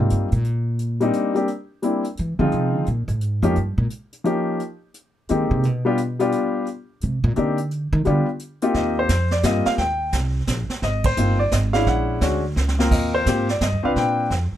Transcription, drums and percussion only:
0.10 closed hi-hat medium
0.32 closed hi-hat soft
0.44 closed hi-hat soft
0.79 closed hi-hat soft
1.00 closed hi-hat soft
1.13 closed hi-hat medium
1.35 closed hi-hat soft
1.48 closed hi-hat soft
1.82 closed hi-hat medium
2.04 closed hi-hat soft
2.17 closed hi-hat soft
2.52 closed hi-hat soft
2.86 closed hi-hat soft
3.08 closed hi-hat soft
3.21 closed hi-hat medium
3.43 closed hi-hat soft
3.56 closed hi-hat soft
3.90 closed hi-hat soft
4.13 closed hi-hat medium
4.25 closed hi-hat soft
4.60 closed hi-hat soft
4.94 closed hi-hat soft
5.29 closed hi-hat medium
5.63 closed hi-hat soft
5.97 closed hi-hat medium
6.20 closed hi-hat medium
6.32 closed hi-hat soft
6.67 closed hi-hat soft
7.01 closed hi-hat medium
7.36 closed hi-hat medium
7.58 closed hi-hat medium
7.71 closed hi-hat soft
8.05 closed hi-hat soft
8.39 closed hi-hat medium
8.62 closed hi-hat medium
8.74 brush sweep soft
8.74 kick soft
8.74 snare soft
9.09 kick soft
9.09 snare medium
9.09 hi-hat pedal medium
9.31 snare soft
9.43 kick soft
9.43 snare medium
9.43 hi-hat pedal medium
9.65 snare soft
9.78 brush sweep soft
9.78 kick soft
9.78 snare soft
10.12 kick soft
10.12 snare medium
10.12 hi-hat pedal medium
10.47 kick soft
10.47 snare medium
10.47 hi-hat pedal medium
10.70 snare soft
10.82 brush sweep soft
10.82 kick soft
10.82 snare soft
11.04 kick medium
11.04 ride medium
11.17 hi-hat pedal medium
11.51 kick soft
11.51 snare medium
11.51 hi-hat pedal medium
11.74 snare soft
11.86 brush sweep soft
11.86 kick soft
11.86 snare soft
12.21 kick soft
12.21 snare medium
12.21 hi-hat pedal medium
12.57 snare soft
12.68 snare medium
12.80 snare medium
12.91 brush sweep soft
12.91 kick medium
12.91 snare soft
12.91 crash medium
13.26 kick soft
13.26 snare medium
13.26 hi-hat pedal soft
13.49 snare soft
13.61 kick soft
13.61 snare medium
13.61 hi-hat pedal soft
13.96 brush sweep soft
13.96 kick soft
13.96 snare soft
14.31 kick soft
14.31 snare soft

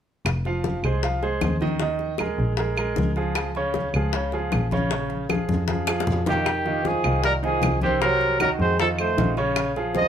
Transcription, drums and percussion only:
0.26 high bongo medium
0.26 high conga soft
0.26 claves medium
0.45 high bongo soft
0.45 high conga soft
0.64 high bongo medium
0.64 high conga medium
0.84 high conga soft
0.84 claves medium
1.03 high bongo medium
1.03 high conga soft
1.22 high bongo soft
1.22 high conga soft
1.41 high bongo soft
1.41 low bongo medium
1.41 high conga medium
1.41 claves medium
1.61 high bongo soft
1.61 high conga medium
1.80 high bongo medium
1.80 high conga soft
1.99 high bongo soft
1.99 high conga soft
2.18 high bongo soft
2.18 high conga medium
2.18 claves medium
2.39 high conga soft
2.57 high bongo medium
2.57 high conga soft
2.77 high bongo soft
2.77 high conga soft
2.77 claves medium
2.96 high bongo soft
2.96 low bongo medium
2.96 high conga medium
3.16 high bongo soft
3.16 high conga soft
3.35 high bongo medium
3.35 high conga soft
3.35 claves medium
3.55 high bongo soft
3.55 high conga soft
3.74 high bongo medium
3.74 high conga medium
3.94 high conga soft
3.94 claves medium
4.13 high bongo medium
4.13 high conga soft
4.32 high bongo soft
4.32 high conga soft
4.52 high bongo soft
4.52 low bongo medium
4.52 high conga medium
4.52 claves medium
4.71 high bongo soft
4.71 high conga medium
4.91 high bongo medium
4.91 high conga soft
5.10 high bongo soft
5.10 high conga soft
5.29 high bongo medium
5.29 high conga medium
5.29 claves medium
5.49 high conga medium
5.68 high bongo medium
5.68 high conga medium
5.87 high bongo medium
5.87 claves medium
6.00 high bongo loud
6.07 low conga medium
6.26 low bongo medium
6.26 low conga medium
6.46 high bongo medium
6.46 high conga soft
6.46 claves medium
6.66 high bongo soft
6.66 high conga soft
6.85 high bongo soft
6.85 high conga medium
7.04 high conga soft
7.04 claves medium
7.24 high bongo medium
7.24 high conga soft
7.43 high bongo soft
7.43 high conga soft
7.62 high bongo soft
7.62 low bongo medium
7.62 high conga medium
7.62 claves medium
7.81 high bongo soft
7.81 high conga medium
8.01 high bongo medium
8.01 high conga soft
8.21 high bongo soft
8.21 high conga soft
8.40 high bongo medium
8.40 high conga medium
8.40 claves medium
8.59 high conga soft
8.79 high bongo medium
8.79 high conga soft
8.99 high bongo soft
8.99 high conga soft
8.99 claves medium
9.18 high bongo soft
9.18 low bongo medium
9.18 high conga medium
9.37 high bongo soft
9.37 high conga soft
9.56 high bongo medium
9.56 high conga soft
9.56 claves medium
9.76 high bongo soft
9.76 high conga soft
9.95 high bongo medium
9.95 high conga medium

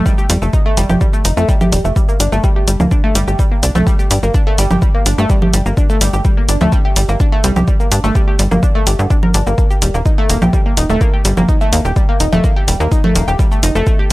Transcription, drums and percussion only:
0.06 kick loud
0.06 shaker soft
0.18 shaker soft
0.30 open hi-hat loud
0.30 shaker medium
0.42 shaker soft
0.53 kick loud
0.53 shaker soft
0.77 open hi-hat medium
0.77 shaker medium
0.90 low conga medium
0.90 shaker soft
1.01 kick loud
1.01 shaker soft
1.13 shaker soft
1.25 open hi-hat loud
1.25 shaker medium
1.37 shaker soft
1.49 kick loud
1.49 shaker soft
1.61 low conga loud
1.61 shaker soft
1.72 open hi-hat medium
1.72 shaker medium
1.85 shaker soft
1.96 kick loud
1.96 shaker soft
2.09 shaker soft
2.20 open hi-hat loud
2.20 shaker medium
2.32 shaker soft
2.44 kick loud
2.44 shaker soft
2.68 open hi-hat medium
2.68 shaker medium
2.80 low conga medium
2.80 shaker soft
2.91 kick loud
2.91 shaker soft
3.15 open hi-hat loud
3.15 shaker medium
3.28 shaker soft
3.39 kick loud
3.39 shaker soft
3.63 open hi-hat medium
3.63 shaker medium
3.75 low conga medium
3.75 shaker soft
3.87 kick loud
3.87 shaker soft
3.99 shaker soft
4.11 open hi-hat loud
4.11 shaker medium
4.23 shaker soft
4.34 kick loud
4.34 shaker soft
4.58 open hi-hat medium
4.58 shaker medium
4.71 low conga medium
4.71 shaker soft
4.82 kick loud
4.82 shaker soft
5.06 open hi-hat loud
5.06 shaker medium
5.18 shaker soft
5.30 kick loud
5.30 shaker soft
5.42 low conga medium
5.53 open hi-hat loud
5.53 shaker medium
5.66 shaker soft
5.77 kick loud
5.77 shaker soft
5.90 shaker soft
6.01 open hi-hat loud
6.01 shaker medium
6.13 shaker soft
6.25 kick loud
6.25 shaker soft
6.49 open hi-hat medium
6.49 shaker medium
6.61 low conga medium
6.61 shaker soft
6.72 kick loud
6.72 shaker soft
6.96 open hi-hat loud
6.96 shaker medium
7.09 shaker soft
7.20 kick loud
7.20 shaker soft
7.44 open hi-hat medium
7.44 shaker medium
7.56 low conga medium
7.56 shaker soft
7.68 kick loud
7.68 shaker soft
7.80 shaker soft
7.92 open hi-hat loud
7.92 shaker medium
8.04 shaker soft
8.15 kick loud
8.15 shaker soft
8.39 open hi-hat medium
8.39 shaker medium
8.52 low conga medium
8.52 shaker soft
8.63 kick loud
8.63 shaker soft
8.87 open hi-hat loud
8.87 shaker medium
8.99 shaker soft
9.11 kick loud
9.11 shaker soft
9.23 low conga medium
9.34 open hi-hat medium
9.34 shaker medium
9.47 shaker soft
9.58 kick loud
9.58 shaker soft
9.71 shaker soft
9.82 open hi-hat loud
9.82 shaker medium
9.94 shaker soft
10.06 kick loud
10.06 shaker soft
10.30 open hi-hat medium
10.30 shaker medium
10.42 low conga medium
10.42 shaker soft
10.53 kick loud
10.53 shaker soft
10.77 open hi-hat loud
10.77 shaker medium
10.90 shaker soft
11.01 kick loud
11.01 shaker soft
11.25 open hi-hat loud
11.25 shaker medium
11.37 low conga medium
11.37 shaker soft
11.49 kick loud
11.49 shaker soft
11.61 shaker soft
11.73 open hi-hat loud
11.73 shaker medium
11.85 shaker soft
11.96 kick loud
11.96 shaker soft
12.20 open hi-hat medium
12.20 shaker medium
12.32 low conga medium
12.32 shaker soft
12.44 kick loud
12.44 shaker soft
12.68 open hi-hat loud
12.68 shaker medium
12.80 shaker soft
12.91 kick loud
12.91 shaker soft
13.04 low conga medium
13.15 open hi-hat medium
13.15 shaker medium
13.28 shaker soft
13.39 kick loud
13.39 shaker soft
13.51 shaker soft
13.63 open hi-hat loud
13.63 shaker medium
13.75 shaker soft
13.87 kick loud
13.87 shaker soft

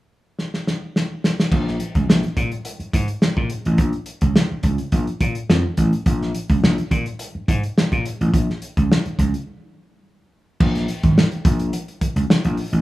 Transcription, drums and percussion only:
0.39 snare soft
0.54 snare soft
0.67 snare medium
0.96 snare medium
1.24 snare medium
1.40 snare medium
1.52 kick medium
1.52 crash medium
1.68 snare soft
1.80 closed hi-hat medium
1.95 kick medium
1.95 closed hi-hat soft
2.10 snare loud
2.23 closed hi-hat soft
2.37 kick medium
2.37 closed hi-hat medium
2.52 closed hi-hat soft
2.65 closed hi-hat medium
2.80 closed hi-hat soft
2.93 kick medium
2.93 closed hi-hat medium
3.08 closed hi-hat medium
3.22 snare medium
3.37 kick medium
3.50 closed hi-hat medium
3.65 closed hi-hat soft
3.78 kick loud
3.78 closed hi-hat medium
3.93 closed hi-hat soft
4.06 closed hi-hat medium
4.21 kick medium
4.21 closed hi-hat soft
4.36 snare loud
4.63 kick medium
4.63 closed hi-hat medium
4.78 closed hi-hat soft
4.92 kick medium
4.92 closed hi-hat medium
5.07 closed hi-hat soft
5.21 kick medium
5.21 closed hi-hat medium
5.35 closed hi-hat soft
5.50 snare loud
5.77 kick medium
5.77 closed hi-hat medium
5.93 closed hi-hat soft
6.06 kick medium
6.06 closed hi-hat medium
6.22 snare soft
6.35 closed hi-hat medium
6.49 kick medium
6.49 closed hi-hat soft
6.64 snare medium
6.78 closed hi-hat soft
6.91 kick medium
6.91 closed hi-hat medium
7.06 closed hi-hat soft
7.19 closed hi-hat medium
7.48 kick medium
7.48 closed hi-hat medium
7.63 closed hi-hat soft
7.78 snare medium
7.92 kick medium
7.92 closed hi-hat soft
8.05 closed hi-hat medium
8.21 closed hi-hat soft
8.34 kick loud
8.34 closed hi-hat medium
8.50 snare soft
8.62 closed hi-hat medium
8.77 kick medium
8.77 closed hi-hat soft
8.92 snare loud
9.05 closed hi-hat soft
9.19 kick medium
9.19 closed hi-hat medium
9.34 closed hi-hat soft
10.60 kick loud
10.60 crash medium
10.75 snare soft
10.75 closed hi-hat soft
10.88 closed hi-hat medium
11.03 kick medium
11.03 closed hi-hat soft
11.18 snare loud
11.32 closed hi-hat soft
11.45 kick loud
11.45 closed hi-hat medium
11.59 closed hi-hat soft
11.73 closed hi-hat medium
11.88 closed hi-hat soft
12.01 kick medium
12.01 closed hi-hat medium
12.16 closed hi-hat medium
12.30 snare loud
12.44 closed hi-hat soft
12.57 open hi-hat medium
12.73 closed hi-hat soft

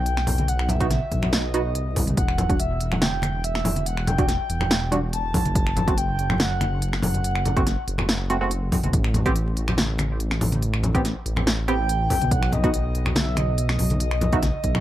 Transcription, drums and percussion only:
0.06 closed hi-hat medium
0.17 finger snap medium
0.17 snare soft
0.27 open hi-hat loud
0.27 low conga loud
0.38 closed hi-hat soft
0.38 high conga medium
0.48 closed hi-hat medium
0.59 finger snap medium
0.69 closed hi-hat medium
0.69 low conga medium
0.81 kick loud
0.81 closed hi-hat soft
0.91 snare soft
0.91 closed hi-hat medium
0.91 high conga medium
1.12 kick medium
1.12 closed hi-hat medium
1.23 finger snap medium
1.23 low conga medium
1.33 snare loud
1.33 closed hi-hat medium
1.54 closed hi-hat medium
1.75 closed hi-hat medium
1.96 kick medium
1.96 open hi-hat loud
1.96 low conga loud
2.07 closed hi-hat soft
2.07 high conga medium
2.17 kick loud
2.17 closed hi-hat medium
2.28 finger snap medium
2.38 closed hi-hat medium
2.38 low conga loud
2.50 kick loud
2.50 closed hi-hat soft
2.60 closed hi-hat medium
2.81 closed hi-hat medium
2.92 finger snap medium
2.92 low conga medium
3.02 snare loud
3.02 closed hi-hat medium
3.02 high conga loud
3.22 finger snap medium
3.22 closed hi-hat medium
3.22 high conga loud
3.44 closed hi-hat medium
3.55 finger snap medium
3.55 snare soft
3.65 open hi-hat medium
3.65 low conga loud
3.76 closed hi-hat soft
3.76 high conga medium
3.86 closed hi-hat medium
3.97 finger snap medium
4.07 closed hi-hat medium
4.07 low conga medium
4.18 kick loud
4.18 closed hi-hat soft
4.29 snare soft
4.29 closed hi-hat medium
4.50 closed hi-hat medium
4.61 finger snap medium
4.61 low conga medium
4.71 snare loud
4.71 closed hi-hat medium
4.92 closed hi-hat medium
5.13 closed hi-hat medium
5.34 kick medium
5.34 open hi-hat medium
5.34 low conga loud
5.45 closed hi-hat soft
5.45 high conga medium
5.55 kick loud
5.55 closed hi-hat medium
5.67 finger snap medium
5.77 closed hi-hat medium
5.77 low conga medium
5.88 kick loud
5.88 closed hi-hat soft
5.98 closed hi-hat medium
6.19 closed hi-hat medium
6.30 finger snap medium
6.30 low conga medium
6.40 snare loud
6.40 closed hi-hat medium
6.40 high conga loud
6.61 finger snap medium
6.61 closed hi-hat medium
6.61 high conga loud
6.82 closed hi-hat medium
6.93 finger snap medium
6.93 snare soft
7.03 open hi-hat medium
7.03 low conga loud
7.14 closed hi-hat soft
7.14 high conga medium
7.24 closed hi-hat medium
7.35 finger snap medium
7.45 closed hi-hat medium
7.45 low conga loud
7.57 kick loud
7.57 closed hi-hat soft
7.67 snare soft
7.67 closed hi-hat medium
7.88 closed hi-hat medium
7.98 finger snap medium
7.98 low conga medium
8.09 snare loud
8.09 closed hi-hat medium
8.30 closed hi-hat medium
8.51 closed hi-hat medium
8.72 kick medium
8.72 open hi-hat medium
8.72 low conga loud
8.83 closed hi-hat soft
8.83 high conga medium
8.93 kick loud
8.93 closed hi-hat medium
9.04 finger snap medium
9.14 closed hi-hat medium
9.14 low conga loud
9.26 kick loud
9.26 closed hi-hat soft
9.36 closed hi-hat medium
9.57 closed hi-hat medium
9.68 finger snap medium
9.68 low conga medium
9.78 snare loud
9.78 closed hi-hat medium
9.78 high conga medium
9.99 finger snap medium
9.99 closed hi-hat medium
9.99 high conga medium
10.20 closed hi-hat medium
10.31 finger snap medium
10.31 snare soft
10.41 open hi-hat medium
10.41 low conga loud
10.52 closed hi-hat soft
10.52 high conga medium
10.62 closed hi-hat medium
10.74 finger snap medium
10.83 closed hi-hat medium
10.83 low conga loud
10.95 kick loud
10.95 closed hi-hat soft
11.05 snare soft
11.05 closed hi-hat medium
11.26 closed hi-hat soft
11.36 finger snap medium
11.36 low conga medium
11.47 snare loud
11.47 closed hi-hat medium
11.68 closed hi-hat medium
11.89 closed hi-hat medium
12.10 kick medium
12.10 open hi-hat medium
12.10 low conga loud
12.21 closed hi-hat soft
12.21 high conga medium
12.31 kick loud
12.31 closed hi-hat medium
12.43 finger snap medium
12.52 closed hi-hat medium
12.52 low conga medium
12.64 kick loud
12.64 closed hi-hat soft
12.74 closed hi-hat medium
12.95 closed hi-hat medium
13.06 finger snap medium
13.06 low conga medium
13.16 snare loud
13.16 closed hi-hat medium
13.16 high conga loud
13.37 finger snap medium
13.37 closed hi-hat medium
13.37 high conga loud
13.58 closed hi-hat medium
13.69 finger snap medium
13.69 snare soft
13.79 open hi-hat loud
13.79 low conga medium
13.90 closed hi-hat soft
13.90 high conga medium
14.00 closed hi-hat medium
14.11 finger snap medium
14.21 closed hi-hat medium
14.21 low conga medium
14.32 kick loud
14.32 closed hi-hat soft
14.43 snare soft
14.43 closed hi-hat medium
14.43 high conga medium
14.64 kick medium
14.64 closed hi-hat medium
14.75 finger snap medium
14.75 low conga medium

